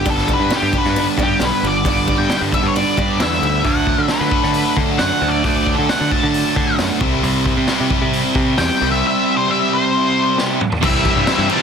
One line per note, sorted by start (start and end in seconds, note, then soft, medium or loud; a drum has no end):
0.06 0.35 G1 loud
0.06 0.75 G2 loud
0.06 0.72 D3 medium
0.06 0.26 G3 medium
0.06 0.74 G3 loud
0.06 0.74 B3 loud
0.06 0.26 D4 medium
0.06 0.73 D4 loud
0.06 0.31 A4 medium
0.06 kick loud
0.06 open hi-hat medium
0.18 snare soft
0.28 0.49 G3 medium
0.28 0.49 D4 medium
0.28 kick medium
0.34 0.54 B4 medium
0.40 0.50 G2 medium
0.50 0.71 G3 medium
0.50 0.71 D4 medium
0.50 snare loud
0.50 open hi-hat medium
0.56 0.77 G4 medium
0.62 0.72 G2 medium
0.73 1.85 G2 medium
0.73 1.85 D3 medium
0.73 0.93 G3 medium
0.73 1.85 G3 medium
0.73 1.85 B3 medium
0.73 0.94 D4 medium
0.73 1.88 D4 medium
0.73 kick medium
0.78 0.99 B4 medium
0.84 1.05 G2 medium
0.84 snare soft
0.96 1.17 G3 medium
0.96 1.16 D4 medium
0.96 open hi-hat medium
1.00 1.05 B4 medium
1.18 1.38 G2 loud
1.18 1.39 G3 medium
1.18 1.39 D4 medium
1.18 kick medium
1.23 1.44 G4 medium
1.40 1.51 B1 medium
1.40 1.61 G3 medium
1.40 1.62 D4 medium
1.40 snare loud
1.40 open hi-hat medium
1.45 1.64 B4 medium
1.63 1.83 G1 medium
1.63 1.84 G3 medium
1.63 1.84 D4 medium
1.67 1.87 D5 medium
1.85 2.15 G1 loud
1.85 2.52 G2 medium
1.85 2.52 D3 medium
1.85 2.06 G3 medium
1.85 2.52 G3 medium
1.85 2.53 B3 loud
1.85 2.06 D4 medium
1.85 2.53 D4 medium
1.85 2.15 D5 medium
1.85 kick loud
1.85 open hi-hat medium
2.08 2.28 G3 medium
2.08 2.28 D4 medium
2.08 kick medium
2.18 2.29 G2 medium
2.18 2.38 G5 medium
2.30 2.51 G3 medium
2.30 2.51 D4 medium
2.30 snare loud
2.30 open hi-hat medium
2.41 2.51 G2 medium
2.52 3.65 G2 medium
2.52 3.64 D3 medium
2.52 2.74 G3 medium
2.52 3.64 G3 medium
2.52 3.64 B3 medium
2.52 3.67 D4 medium
2.52 2.74 D4 medium
2.52 2.67 E5 medium
2.52 kick medium
2.63 2.83 G2 medium
2.68 2.75 C#5 medium
2.75 2.96 G3 medium
2.75 2.96 D4 medium
2.75 3.21 D5 loud
2.75 open hi-hat medium
2.97 3.17 G2 medium
2.97 3.18 G3 medium
2.97 3.18 D4 medium
2.97 kick medium
3.20 3.40 E2 medium
3.20 3.40 G3 medium
3.20 3.41 D4 medium
3.20 3.67 E5 medium
3.20 snare loud
3.20 open hi-hat medium
3.42 3.62 D2 medium
3.42 3.63 G3 medium
3.42 3.63 D4 medium
3.65 3.94 D2 loud
3.65 4.33 D3 medium
3.65 4.33 F#3 medium
3.65 4.32 A3 medium
3.65 4.31 D4 loud
3.65 4.12 F#5 medium
3.65 kick loud
3.65 open hi-hat medium
3.87 kick medium
3.98 4.08 D3 medium
4.08 4.74 B4 medium
4.08 snare loud
4.08 open hi-hat medium
4.21 4.31 D3 medium
4.31 5.44 D3 medium
4.31 5.44 F#3 medium
4.31 5.43 A3 medium
4.31 5.43 D4 medium
4.31 kick medium
4.43 4.63 D3 medium
4.43 snare soft
4.54 open hi-hat medium
4.77 4.97 D3 medium
4.77 kick medium
4.98 5.10 F#2 medium
4.98 5.30 F#5 medium
4.98 snare loud
4.98 open hi-hat medium
5.22 5.41 D2 medium
5.29 5.43 D5 medium
5.44 5.74 D2 medium
5.44 6.11 D3 medium
5.44 6.11 F#3 loud
5.44 6.12 A3 medium
5.44 6.11 D4 medium
5.44 5.75 D5 medium
5.44 kick loud
5.44 open hi-hat medium
5.67 kick medium
5.75 5.88 D3 medium
5.75 5.89 A4 medium
5.89 6.11 F#5 loud
5.89 snare loud
5.89 open hi-hat medium
6.01 6.10 D3 medium
6.12 6.99 D3 medium
6.12 7.00 F#3 medium
6.12 7.01 A3 medium
6.12 7.01 D4 medium
6.12 6.75 A5 loud
6.12 kick medium
6.23 6.43 D3 medium
6.34 open hi-hat medium
6.56 6.76 D3 loud
6.56 kick medium
6.79 6.89 F#2 medium
6.79 snare loud
6.79 open hi-hat medium
7.00 7.21 C2 medium
7.00 7.68 C3 medium
7.00 7.70 G3 medium
7.00 7.70 C4 medium
7.00 7.71 E4 loud
7.00 kick loud
7.23 7.53 C2 loud
7.23 open hi-hat medium
7.46 kick medium
7.57 7.67 C3 medium
7.68 8.80 C3 medium
7.68 8.81 G3 medium
7.68 8.82 C4 medium
7.68 snare loud
7.68 open hi-hat medium
7.72 8.83 E4 medium
7.80 7.90 C3 medium
7.90 kick medium
8.02 8.22 C3 medium
8.13 open hi-hat medium
8.35 8.55 C3 medium
8.35 kick medium
8.58 8.69 E2 medium
8.58 8.86 G5 loud
8.58 snare loud
8.58 open hi-hat medium
8.81 9.01 C2 medium
8.81 9.47 C3 medium
8.81 9.47 G3 loud
8.81 9.48 C4 loud
8.81 9.48 E4 loud
8.92 9.04 E5 medium
9.07 9.33 E5 medium
9.37 9.51 C5 medium
9.48 10.59 C3 medium
9.48 10.60 G3 medium
9.48 10.60 C4 medium
9.48 10.60 E4 medium
9.48 9.73 E5 medium
9.73 10.35 C5 medium
10.38 snare medium
10.61 mid tom medium
10.72 floor tom medium
10.83 11.12 C2 medium
10.83 11.27 C3 loud
10.83 11.29 E3 loud
10.83 11.05 G3 loud
10.83 11.05 C4 loud
10.83 11.04 E4 loud
10.83 11.47 E5 medium
10.83 kick loud
10.83 crash loud
10.83 crash medium
11.05 11.28 G3 medium
11.05 11.29 C4 medium
11.05 11.29 E4 medium
11.05 kick loud
11.05 crash medium
11.16 11.26 G2 medium
11.24 11.62 C3 loud
11.24 11.62 E3 medium
11.24 snare loud
11.24 crash loud
11.29 11.62 E3 loud
11.29 11.52 G3 loud
11.29 11.50 C4 loud
11.29 11.50 E4 loud
11.38 11.48 G2 medium
11.49 11.62 C3 medium
11.49 11.62 G3 medium
11.49 11.62 C4 medium
11.49 11.62 E4 medium
11.49 11.62 A5 loud
11.49 crash medium